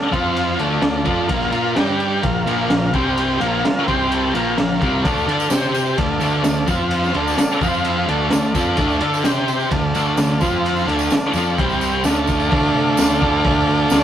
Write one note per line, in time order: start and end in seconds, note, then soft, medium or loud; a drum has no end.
0.00 0.13 A4 medium
0.00 0.13 D5 medium
0.00 0.11 F5 medium
0.00 snare soft
0.11 0.56 F2 loud
0.11 0.58 F3 medium
0.11 0.58 C4 medium
0.11 0.59 F4 medium
0.11 0.59 C5 medium
0.11 0.59 F5 medium
0.11 kick medium
0.11 ride medium
0.36 ride medium
0.59 0.81 D2 medium
0.59 0.81 D3 medium
0.59 0.81 A3 medium
0.59 0.82 D4 medium
0.59 1.26 F4 medium
0.59 1.30 A4 medium
0.59 1.30 D5 medium
0.59 ride medium
0.82 1.04 D2 medium
0.82 1.01 D3 medium
0.82 1.01 A3 medium
0.82 snare loud
0.82 ride medium
1.05 1.28 F2 loud
1.05 1.28 F3 medium
1.05 1.28 C4 medium
1.05 1.28 F4 loud
1.05 kick medium
1.05 ride medium
1.27 1.51 A#1 loud
1.27 1.51 A#2 loud
1.27 1.51 F3 loud
1.27 1.50 A#3 loud
1.27 1.75 F4 medium
1.27 1.76 A#4 medium
1.27 1.76 F5 medium
1.27 kick loud
1.27 ride loud
1.41 snare soft
1.52 1.74 A#2 loud
1.52 1.75 A#3 medium
1.52 1.75 F4 medium
1.52 1.75 A#4 medium
1.52 ride medium
1.75 2.20 G2 medium
1.75 2.22 G3 loud
1.75 2.23 D4 medium
1.75 2.23 G4 medium
1.75 2.23 G4 loud
1.75 2.23 D5 medium
1.75 2.23 G5 medium
1.75 snare loud
1.75 ride medium
2.00 ride medium
2.22 2.45 A#1 medium
2.22 2.42 A#2 medium
2.22 2.42 F3 medium
2.22 2.93 F4 medium
2.22 2.93 A#4 medium
2.22 2.93 F5 medium
2.22 kick loud
2.22 ride medium
2.46 2.68 A#1 medium
2.46 2.69 A#2 medium
2.46 2.69 F3 medium
2.46 2.69 A#3 medium
2.46 ride medium
2.69 2.91 A#1 medium
2.69 2.89 A#2 medium
2.69 2.89 F3 medium
2.69 snare loud
2.69 ride medium
2.93 3.37 C2 loud
2.93 3.39 C3 medium
2.93 3.40 G3 medium
2.93 3.40 C4 loud
2.93 3.41 G4 medium
2.93 3.41 C5 medium
2.93 3.41 G5 medium
2.93 kick loud
2.93 ride medium
3.17 ride medium
3.40 3.62 A#1 medium
3.40 3.63 A#2 medium
3.40 3.63 F3 medium
3.40 3.64 A#3 loud
3.40 3.87 F4 medium
3.40 3.87 A#4 medium
3.40 3.87 F5 medium
3.40 ride medium
3.64 muted picked electric bass stroke soft
3.64 muted distorted electric guitar stroke medium
3.64 snare loud
3.64 ride medium
3.87 4.31 C2 medium
3.87 4.33 C3 medium
3.87 4.34 G3 medium
3.87 4.34 C4 medium
3.87 4.34 G4 medium
3.87 4.34 C5 medium
3.87 4.33 G5 medium
3.87 4.09 C6 medium
3.87 kick medium
3.87 ride medium
4.12 4.33 A5 medium
4.12 ride medium
4.34 4.56 A#1 medium
4.34 4.57 A#2 medium
4.34 4.58 F3 medium
4.34 4.58 A#3 medium
4.34 5.04 F4 medium
4.34 5.04 A#4 medium
4.34 4.55 F5 medium
4.34 4.56 G5 medium
4.34 ride medium
4.56 4.79 A#1 medium
4.56 4.77 A#2 medium
4.56 4.77 F3 medium
4.56 5.00 F5 medium
4.56 snare loud
4.56 ride medium
4.81 5.03 C2 medium
4.81 5.04 C3 medium
4.81 5.05 G3 loud
4.81 5.05 C4 medium
4.81 kick medium
4.81 ride medium
5.03 5.26 D2 loud
5.03 5.28 D3 medium
5.03 5.28 A3 loud
5.03 5.27 D4 loud
5.03 5.50 A4 medium
5.03 5.51 D5 medium
5.03 5.51 F5 medium
5.03 kick loud
5.03 ride loud
5.03 tambourine soft
5.17 tambourine soft
5.26 5.49 D3 medium
5.26 5.51 D4 medium
5.26 5.51 A4 medium
5.26 5.51 D5 loud
5.26 ride medium
5.40 tambourine medium
5.50 5.94 C3 medium
5.50 5.97 C4 medium
5.50 5.98 G4 medium
5.50 5.97 G4 loud
5.50 5.98 C5 medium
5.50 5.98 C5 loud
5.50 5.99 G5 medium
5.50 snare loud
5.50 ride medium
5.50 tambourine loud
5.63 snare soft
5.74 ride medium
5.74 tambourine medium
5.86 tambourine soft
5.97 6.19 D2 medium
5.97 6.16 D3 medium
5.97 6.16 A3 medium
5.97 6.67 A4 medium
5.97 6.68 D5 medium
5.97 6.68 F5 medium
5.97 kick loud
5.97 ride loud
6.20 6.43 D2 medium
6.20 6.41 D3 medium
6.20 6.41 A3 medium
6.20 6.44 D4 medium
6.20 ride medium
6.20 tambourine medium
6.42 6.66 D2 medium
6.42 6.62 D3 medium
6.42 6.62 A3 medium
6.42 snare loud
6.42 ride loud
6.42 tambourine medium
6.56 tambourine soft
6.66 7.11 F2 medium
6.66 7.13 F3 medium
6.66 7.13 C4 medium
6.66 7.14 F4 loud
6.66 7.16 F4 medium
6.66 kick loud
6.66 ride medium
6.66 tambourine medium
6.70 7.16 C5 medium
6.70 7.16 F5 medium
6.91 ride loud
6.91 tambourine soft
7.03 snare soft
7.03 tambourine soft
7.13 7.36 D2 loud
7.13 7.37 D3 medium
7.13 7.37 A3 medium
7.13 7.37 D4 loud
7.13 7.62 A4 medium
7.13 7.62 D5 medium
7.13 ride medium
7.17 7.63 F5 medium
7.28 tambourine medium
7.37 muted picked electric bass stroke soft
7.37 muted distorted electric guitar stroke medium
7.37 snare loud
7.37 ride medium
7.37 tambourine medium
7.61 8.05 F2 loud
7.61 8.06 F3 medium
7.61 8.07 C4 loud
7.61 8.07 F4 loud
7.61 8.09 F4 medium
7.61 8.09 C5 medium
7.61 8.09 F5 medium
7.61 kick medium
7.61 ride medium
7.61 tambourine medium
7.74 tambourine soft
7.85 ride loud
8.07 8.30 D2 medium
8.07 8.30 D3 medium
8.07 8.30 A3 loud
8.07 8.31 D4 loud
8.07 9.23 A4 medium
8.07 ride medium
8.11 9.24 D5 medium
8.11 9.25 F5 medium
8.30 8.53 D2 medium
8.30 8.50 D3 medium
8.30 8.50 A3 medium
8.30 snare loud
8.30 ride medium
8.30 tambourine medium
8.44 tambourine soft
8.54 8.76 F2 medium
8.54 8.77 F3 medium
8.54 8.78 C4 medium
8.54 8.78 F4 loud
8.54 kick medium
8.54 ride medium
8.54 tambourine medium
8.77 9.00 D2 loud
8.77 9.00 D3 medium
8.77 9.01 A3 loud
8.77 9.00 D4 loud
8.77 kick loud
8.77 ride loud
8.77 tambourine soft
8.90 tambourine soft
9.01 9.23 D3 loud
9.01 9.24 D4 loud
9.01 9.25 A4 loud
9.01 9.25 D5 loud
9.01 ride medium
9.14 tambourine medium
9.24 9.68 C3 medium
9.24 9.71 C4 medium
9.24 9.71 G4 medium
9.24 9.71 G4 loud
9.24 9.72 C5 medium
9.24 9.71 C5 loud
9.24 9.71 G5 medium
9.24 snare loud
9.24 ride medium
9.24 tambourine medium
9.48 ride medium
9.48 tambourine medium
9.60 tambourine soft
9.71 9.93 D2 medium
9.71 9.90 D3 medium
9.71 9.90 A3 medium
9.71 10.42 A4 medium
9.71 10.42 D5 medium
9.71 10.40 F5 medium
9.71 kick loud
9.71 ride loud
9.94 10.17 D2 medium
9.94 10.16 D3 medium
9.94 10.17 A3 medium
9.94 10.18 D4 medium
9.94 ride medium
9.94 tambourine medium
10.17 10.39 D2 medium
10.17 10.37 D3 medium
10.17 10.37 A3 medium
10.17 snare loud
10.17 ride loud
10.17 tambourine medium
10.29 tambourine soft
10.40 10.85 F2 medium
10.40 10.87 F3 medium
10.40 10.88 C4 medium
10.40 10.87 F4 medium
10.40 10.88 F4 medium
10.40 10.88 C5 medium
10.40 10.87 F5 medium
10.40 kick loud
10.40 ride medium
10.40 tambourine medium
10.65 ride medium
10.65 tambourine soft
10.76 tambourine soft
10.86 11.09 D2 loud
10.86 11.10 D3 medium
10.86 11.11 A3 loud
10.86 11.11 D4 loud
10.86 11.58 A4 medium
10.86 11.58 D5 medium
10.86 11.58 F5 medium
10.86 ride medium
10.86 tambourine soft
10.99 tambourine medium
11.10 muted picked electric bass stroke soft
11.10 muted distorted electric guitar stroke medium
11.10 snare loud
11.10 ride medium
11.10 tambourine medium
11.22 tambourine soft
11.33 11.56 F2 loud
11.33 11.58 F3 medium
11.33 11.58 C4 medium
11.33 11.59 F4 medium
11.33 ride medium
11.33 tambourine medium
11.58 12.01 C2 medium
11.58 12.03 C3 medium
11.58 12.05 G3 loud
11.58 12.05 C4 medium
11.58 12.05 G4 medium
11.58 12.05 C5 medium
11.58 12.05 G5 medium
11.58 kick loud
11.58 ride medium
11.58 tambourine soft
11.70 tambourine soft
11.81 ride medium
11.81 tambourine medium
11.92 tambourine soft
12.03 12.48 D2 loud
12.03 12.49 D3 medium
12.03 12.50 A3 loud
12.03 12.51 D4 loud
12.03 12.48 A4 medium
12.03 12.49 D5 medium
12.03 12.51 F5 medium
12.03 snare loud
12.03 ride medium
12.03 tambourine loud
12.16 tambourine soft
12.27 kick medium
12.27 ride medium
12.27 tambourine medium
12.40 tambourine soft
12.49 12.69 D2 loud
12.49 13.23 D3 medium
12.49 13.21 A3 medium
12.49 14.04 A4 medium
12.49 14.04 D5 medium
12.49 14.04 F5 loud
12.49 kick loud
12.49 open hi-hat medium
12.54 13.20 D4 loud
12.75 12.92 C3 loud
12.97 13.16 D2 medium
12.97 snare loud
12.97 open hi-hat medium
12.97 tambourine loud
13.20 13.39 D2 loud
13.20 13.89 D3 medium
13.20 13.90 A3 medium
13.20 13.93 D4 medium
13.20 kick medium
13.45 13.62 D2 loud
13.45 kick loud
13.45 open hi-hat medium
13.67 13.85 D2 medium
13.90 14.04 D2 loud
13.90 14.04 D3 medium
13.90 14.04 A3 loud
13.90 14.04 D4 loud
13.90 snare loud
13.90 open hi-hat medium
13.90 tambourine loud